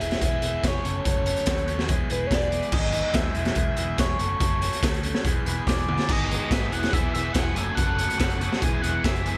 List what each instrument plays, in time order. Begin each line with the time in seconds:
Already playing: analog synth lead E5
0.00 picked electric bass E1, overdriven electric guitar E3 G#3 B3 E4 G#4, closed hi-hat
0.11 snare, closed hi-hat
0.21 picked electric bass E1, overdriven electric guitar E3 G#3 B3 E4 G#4, kick, closed hi-hat
0.25 analog synth lead E5
0.42 picked electric bass E1, overdriven electric guitar E3 G#3 B3 E4 G#4, closed hi-hat
0.63 picked electric bass F1, overdriven electric guitar E3 G#3 B3 E4 G#4, kick, snare, closed hi-hat
0.67 analog synth lead C#5
0.84 picked electric bass F#1, overdriven electric guitar F#2 C#3 F#3 A3 C#4 A4, closed hi-hat
1.04 picked electric bass F#1, overdriven electric guitar F#2 C#3 F#3 A3 C#4 A4, kick, closed hi-hat
1.09 analog synth lead C#5
1.25 overdriven electric guitar F#2 C#3 F#3 A3 C#4 A4, closed hi-hat
1.36 closed hi-hat
1.46 picked electric bass D#2, overdriven electric guitar F#2 C#3 F#3 A3 C#4 A4, kick, snare, closed hi-hat
1.58 closed hi-hat
1.67 overdriven electric guitar F#2 C#3 F#3 A3 C#4 A4, closed hi-hat
1.79 snare
1.89 picked electric bass E1, overdriven electric guitar E3 G#3 B3 E4 G#4, kick, closed hi-hat
2.10 picked electric bass E1, overdriven electric guitar E3 G#3 B3 E4 G#4, analog synth lead B4, closed hi-hat
2.27 analog synth lead C#5
2.31 picked electric bass E1, overdriven electric guitar E3 G#3 B3 E4 G#4, analog synth lead D5, kick, snare, closed hi-hat
2.41 closed hi-hat
2.51 overdriven electric guitar E3 G#3 B3 E4 G#4, closed hi-hat
2.62 closed hi-hat
2.72 picked electric bass G#1, overdriven electric guitar G#2 D#3 G#3 B3 D#4 G#4, analog synth lead D#5, kick, crash
2.92 overdriven electric guitar G#2 D#3 G#3 B3 D#4 G#4, closed hi-hat
3.14 picked electric bass D#2, overdriven electric guitar G#2 D#3 G#3 B3 D#4 G#4, analog synth lead E5, kick, snare, closed hi-hat
3.35 picked electric bass E1, overdriven electric guitar E3 G#3 B3 E4 G#4, closed hi-hat
3.45 snare, closed hi-hat
3.55 picked electric bass E1, overdriven electric guitar E3 G#3 B3 E4 G#4, analog synth lead E5, kick, closed hi-hat
3.77 picked electric bass E1, overdriven electric guitar E3 G#3 B3 E4 G#4, closed hi-hat
3.98 picked electric bass E1, overdriven electric guitar E3 G#3 B3 E4 G#4, analog synth lead C#5, kick, snare, closed hi-hat
4.19 picked electric bass F#1, overdriven electric guitar F#2 C#3 F#3 A3 C#4 A4, closed hi-hat
4.40 picked electric bass F#1, overdriven electric guitar F#2 C#3 F#3 A3 C#4 A4, analog synth lead C#5, kick, closed hi-hat
4.61 overdriven electric guitar F#2 C#3 F#3 A3 C#4 A4, closed hi-hat
4.73 closed hi-hat
4.83 picked electric bass D2, overdriven electric guitar F#2 C#3 F#3 A3 C#4 A4, kick, snare, closed hi-hat
4.94 closed hi-hat
5.03 overdriven electric guitar F#2 C#3 F#3 A3 C#4 A4, closed hi-hat
5.15 snare
5.24 picked electric bass E1, overdriven electric guitar E3 G#3 B3 E4 G#4, kick, closed hi-hat
5.46 picked electric bass E1, overdriven electric guitar E3 G#3 B3 E4 G#4, analog synth lead B4, closed hi-hat
5.67 picked electric bass E1, overdriven electric guitar E3 G#3 B3 E4 G#4, analog synth lead D5, kick, snare, closed hi-hat
5.78 closed hi-hat
5.88 overdriven electric guitar E3 G#3 B3 E4 G#4, high tom
5.99 snare
6.09 picked electric bass G#1, overdriven electric guitar G#2 D#3 G#3 B3 D#4 G#4, analog synth lead D#5, kick, crash
6.30 overdriven electric guitar G#2 D#3 G#3 B3 D#4 G#4, closed hi-hat
6.51 picked electric bass G#1, overdriven electric guitar G#2 D#3 G#3 B3 D#4 G#4, analog synth lead E5, kick, snare, closed hi-hat
6.71 picked electric bass E1, overdriven electric guitar E2 B2 E3 G#3 B3 E4 G#4, analog synth lead F#5, closed hi-hat
6.83 snare, closed hi-hat
6.91 picked electric bass E1, overdriven electric guitar E2 B2 E3 G#3 B3 E4, analog synth lead E5, kick, closed hi-hat
6.95 overdriven electric guitar G#4
7.14 picked electric bass E1, overdriven electric guitar E2 B2 E3 G#3 B3 E4 G#4, analog synth lead E5, closed hi-hat
7.33 picked electric bass E1, overdriven electric guitar E2 B2 E3 G#3, analog synth lead F#5, kick, snare, closed hi-hat
7.37 overdriven electric guitar B3 E4 G#4
7.55 picked electric bass F#1, overdriven electric guitar F#2 C#3 F#3 A3 C#4 A4, analog synth lead G#5, closed hi-hat
7.75 picked electric bass F#1, overdriven electric guitar F#2 C#3 F#3 A3 C#4 A4, analog synth lead F#5, kick, closed hi-hat
7.99 overdriven electric guitar F#2 C#3 F#3 A3 C#4 A4, closed hi-hat
8.10 closed hi-hat
8.19 picked electric bass F#1, overdriven electric guitar F#2 C#3 F#3 A3 C#4 A4, kick, snare, closed hi-hat
8.30 closed hi-hat
8.40 overdriven electric guitar F#2 C#3 F#3 A3 C#4 A4, closed hi-hat
8.53 snare
8.61 picked electric bass E1, overdriven electric guitar E2 B2 E3 G#3 B3 E4 G#4, analog synth lead G#5, kick, closed hi-hat
8.81 picked electric bass E1, overdriven electric guitar E2 B2 E3 G#3 B3 E4 G#4, analog synth lead F#5, closed hi-hat
9.04 picked electric bass F#1, overdriven electric guitar E2 B2 E3 G#3 B3 E4 G#4, analog synth lead E5, kick, snare, closed hi-hat
9.15 closed hi-hat
9.24 overdriven electric guitar E2 B2 E3 G#3 B3 E4 G#4, analog synth lead E5, closed hi-hat